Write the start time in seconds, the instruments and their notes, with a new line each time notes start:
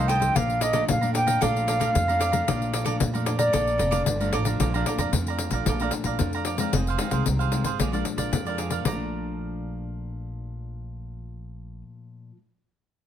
Already playing: upright bass C2, nylon-string guitar C3 D#3 A3 C4
0.08 cavaquinho F4 A4 C5 D#5, flute G5, pandeiro
0.20 nylon-string guitar F3 A3 D4, cavaquinho A4 C5 D#5, pandeiro
0.35 upright bass A#1, nylon-string guitar A#2, cavaquinho A4 D5 F5 A#5, flute F5, pandeiro
0.50 pandeiro
0.61 cavaquinho A4 D5 F5 A#5, flute D#5, pandeiro
0.73 nylon-string guitar F3 A3 D4, cavaquinho A4 D5 F5 A#5, pandeiro
0.88 nylon-string guitar F2, upright bass A#2, flute F5, pandeiro
1.01 nylon-string guitar F3 A3 D4, cavaquinho D5 F5 A#5, pandeiro
1.14 cavaquinho A4 D5 F5 A#5, flute G5, pandeiro
1.27 cavaquinho D5 F5 A#5, pandeiro
1.41 upright bass A#1, nylon-string guitar A#2 F3 A3 D4, cavaquinho A4 D5 F5 A#5, flute F5, pandeiro
1.56 pandeiro
1.67 cavaquinho A4 D5 F5 A#5, pandeiro
1.80 nylon-string guitar F3 A3 D4, cavaquinho A4 D5 F5 A#5, pandeiro
1.95 nylon-string guitar F2, upright bass F2, pandeiro
2.08 nylon-string guitar F3 A3 D4, cavaquinho D5 F5 A#5, pandeiro
2.20 cavaquinho A4 D5 F5 A#5, pandeiro
2.32 nylon-string guitar F3 A3 D4, cavaquinho D5 F5 A#5, pandeiro
2.47 upright bass A#1, nylon-string guitar A#2 F3 A3 D4, cavaquinho A4 D5 F5 A#5, pandeiro
2.62 pandeiro
2.73 cavaquinho A4 D5 F5 A#5, pandeiro
2.85 nylon-string guitar F3 A3 D4, cavaquinho A4 D5 F5 A#5, pandeiro
3.00 nylon-string guitar F2, upright bass A#2, pandeiro
3.13 nylon-string guitar F3 A3 D4, cavaquinho D5 F5 A#5, pandeiro
3.26 cavaquinho A4 D5 F5 A#5, pandeiro
3.39 flute D5, cavaquinho D5 F5 A#5, pandeiro
3.53 upright bass A#1, nylon-string guitar A#2 F3 A3 D4, cavaquinho A4 D5 F5 A#5, pandeiro
3.67 pandeiro
3.78 upright bass F1, cavaquinho A4 D5 F5 A#5, pandeiro
3.91 nylon-string guitar F3 A3 D4, cavaquinho A4 D5 F5 A#5, pandeiro
4.06 upright bass G1, nylon-string guitar F2, pandeiro
4.20 nylon-string guitar F3 A3 D4, cavaquinho D5 F5 A#5, pandeiro
4.33 upright bass A1, cavaquinho A4 D5 F5 A#5, pandeiro
4.45 nylon-string guitar F3 A3 D4, cavaquinho D5 F5 A#5, pandeiro
4.60 upright bass A#1, nylon-string guitar A#2, cavaquinho A4 D5 F5 A#5, pandeiro
4.74 nylon-string guitar F3 A3 D4, cavaquinho D5 F5 A#5, pandeiro
4.86 cavaquinho A4 D5 F5 A#5, pandeiro
4.98 upright bass F2, cavaquinho D5 F5 A#5, pandeiro
5.12 nylon-string guitar F2 F3 A3 D4, upright bass F2, muted cavaquinho stroke, pandeiro
5.27 cavaquinho D5 F5 A#5, pandeiro
5.39 pandeiro
5.50 upright bass A#1, nylon-string guitar F3 A3 D4, cavaquinho F5 A#5, pandeiro
5.54 cavaquinho D5
5.66 upright bass A#1, nylon-string guitar A#2, cavaquinho A4 D5 F5 A#5, pandeiro
5.80 nylon-string guitar F3 A3 D4, cavaquinho D5 F5 A#5, pandeiro
5.91 muted cavaquinho stroke, pandeiro
6.04 upright bass A#1, cavaquinho D5 F5 A#5, pandeiro
6.19 nylon-string guitar F2 F3 A3 D4, upright bass F2, pandeiro
6.33 cavaquinho D5 F5 A#5, pandeiro
6.45 cavaquinho A4 D5 F5 A#5, pandeiro
6.57 nylon-string guitar D#3 G#3 C4, cavaquinho F5 A#5, pandeiro
6.61 cavaquinho D5
6.72 upright bass F1, nylon-string guitar F2, cavaquinho D#4 G#4 C5, pandeiro
6.77 cavaquinho F5
6.87 cavaquinho G#4 C5 F5, pandeiro
6.97 nylon-string guitar D#3 G#3 C4, cavaquinho D#4 G#4, pandeiro
7.01 cavaquinho C5 F5
7.10 upright bass C2, nylon-string guitar D#3 G#3 C4, cavaquinho G#4 C5 F5, pandeiro
7.25 upright bass C2, nylon-string guitar C3, muted cavaquinho stroke, pandeiro
7.39 cavaquinho G#4 C5 F5, pandeiro
7.51 nylon-string guitar D#3 G#3 C4, pandeiro
7.64 upright bass G#1, cavaquinho G#4 C5 F5, pandeiro
7.78 upright bass A#1, nylon-string guitar A#2 F3 G#3 D4, cavaquinho G#4 A#4 D5 F5, pandeiro
7.92 nylon-string guitar F3 G#3 D4, cavaquinho A#4 D5 F5, pandeiro
8.05 muted cavaquinho stroke, pandeiro
8.17 upright bass A#1, cavaquinho A#4 D5 F5, pandeiro
8.31 nylon-string guitar F2, upright bass F2, pandeiro
8.45 nylon-string guitar F3 G#3 D4, cavaquinho A#4 D5 F5, pandeiro
8.58 cavaquinho G#4 A#4 D5 F5, pandeiro
8.70 cavaquinho A#4 D5 F5, pandeiro
8.80 nylon-string guitar A#2
8.85 upright bass A#1, nylon-string guitar F3, cavaquinho D5 F5 A#5, pandeiro
8.91 nylon-string guitar A3
8.96 nylon-string guitar D4